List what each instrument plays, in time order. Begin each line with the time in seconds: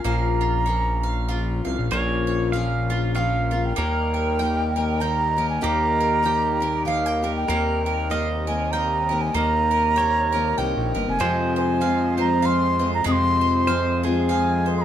Already playing: mandolin F4 C#5
0.04 analog synth bass A#1, steel-string acoustic guitar A#2 F3 C#4 F4 A#4, mandolin A#3 F5, flute A#5
0.41 mandolin F4
0.66 steel-string acoustic guitar F3 C#4 F4 A#4, mandolin C#5
1.03 mandolin F5
1.28 steel-string acoustic guitar F3 C#4 F4 A#4, mandolin F4
1.65 analog synth bass C2, mandolin F5
1.78 analog synth bass A#1
1.91 analog synth bass A#1, steel-string acoustic guitar A#2 F3 C#4 F4 A#4, harmonium C#3 A#3 F4, mandolin A#3, pedal steel guitar C#5
2.27 mandolin C#5
2.52 steel-string acoustic guitar F3 C#4 F4 A#4, pedal steel guitar F5, mandolin F5
2.90 steel-string acoustic guitar C#4 F4 A#4, mandolin F4
3.15 steel-string acoustic guitar F3 C#4 F4 A#4, mandolin C#5, pedal steel guitar F5, flute G5
3.19 flute F5
3.51 steel-string acoustic guitar C#4 F4 A#4, mandolin F4
3.65 flute G5
3.76 analog synth bass D#2, steel-string acoustic guitar D#3 A#3 D#4 G4, harmonium D#3 G3 A#3, mandolin A#3, pedal steel guitar A#4
4.14 mandolin A#4, flute G5
4.39 steel-string acoustic guitar D#3 A#3 D#4 G4, mandolin G5
4.76 steel-string acoustic guitar A#3 D#4 G4, mandolin A#4
5.00 steel-string acoustic guitar D#3 A#3 D#4 G4, mandolin G5, flute A#5
5.37 steel-string acoustic guitar A#3 D#4 G4, mandolin A#4
5.49 flute G#5
5.61 analog synth bass D#2, steel-string acoustic guitar D#3 A#3 D#4 G4, mandolin A#3, pedal steel guitar G4, flute A#5
6.00 mandolin A#4
6.23 steel-string acoustic guitar D#3 A#3 D#4 G4, pedal steel guitar G4, mandolin G5
6.60 steel-string acoustic guitar A#3 D#4 G4, mandolin A#4
6.85 steel-string acoustic guitar D#3 A#3 D#4 G4, flute F5, mandolin F5
7.06 mandolin G5
7.22 steel-string acoustic guitar A#3 D#4 G4, mandolin A#4
7.37 flute G5
7.48 analog synth bass D#2, harmonium C3, steel-string acoustic guitar D#3 A#3 D#4 G4, mandolin A#3, pedal steel guitar A#4
7.86 mandolin A#4, flute G5
8.10 steel-string acoustic guitar D#3 A#3 D#4 G4, pedal steel guitar D#5, mandolin F5
8.47 steel-string acoustic guitar A#3 D#4, mandolin A#4, flute G#5
8.71 steel-string acoustic guitar D#3 A#3 D#4 G4, mandolin G5, flute A#5
9.09 steel-string acoustic guitar A#3 D#4 G4, mandolin A#4
9.21 flute G#5
9.34 analog synth bass D#2, steel-string acoustic guitar D#3 A#3 D#4 G4, mandolin A#3, flute A#5
9.71 mandolin A#4
9.96 steel-string acoustic guitar D#3 A#3 D#4 G4, pedal steel guitar C#5, mandolin G5
10.32 steel-string acoustic guitar A#3 D#4 G4, mandolin A#4
10.58 analog synth bass C2, steel-string acoustic guitar D#3 A#3 D#4 G4, mandolin G5, flute G5
10.77 analog synth bass A#1
10.95 analog synth bass G1, steel-string acoustic guitar A#3 D#4 G4, mandolin A#4
11.08 analog synth bass F1, flute G#5
11.19 steel-string acoustic guitar F2 C3 F3 G#3 C4 F4, analog synth bass F2, harmonium C3 G#3 F4, mandolin G#3, pedal steel guitar C5
11.56 mandolin C5, flute G#5
11.81 steel-string acoustic guitar F3 G#3 C4 F4, mandolin F5
12.17 steel-string acoustic guitar F3 G#3 C4 F4, mandolin C5, flute A#5
12.42 steel-string acoustic guitar F3 G#3 C4 F4, mandolin F5, flute C6
12.79 steel-string acoustic guitar F3 G#3 C4 F4, mandolin C5
12.94 flute A#5
13.04 analog synth bass F2, steel-string acoustic guitar F2 C3 F3 G#3 C4 F4, mandolin G#3, flute D#6
13.12 flute C6
13.41 mandolin C5
13.67 steel-string acoustic guitar F3 G#3 C4 F4, pedal steel guitar C5, mandolin F5
14.03 steel-string acoustic guitar F3 G#3 C4 F4, pedal steel guitar G#4, mandolin C5
14.29 steel-string acoustic guitar F3 G#3 C4 F4, mandolin F5, flute G#5
14.66 mandolin C5
14.78 flute A#5 C6